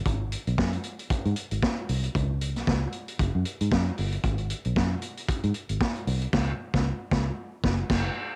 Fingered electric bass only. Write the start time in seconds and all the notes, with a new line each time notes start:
0.06 G#1
0.47 B1
0.59 F#2
1.11 muted fingered electric bass stroke
1.26 G#2
1.52 G#1
1.89 C2
2.15 C#2
2.56 B1
2.68 C#2
3.20 F#1
3.35 F#2
3.61 G#2
3.72 F#2
3.99 G1
4.24 G#1
4.66 B1
4.77 F#2
5.29 muted fingered electric bass stroke
5.44 G#2
5.70 G#1
6.07 C2
6.33 C#2
6.74 C#2
7.12 C#2
7.64 F#1
7.90 F#1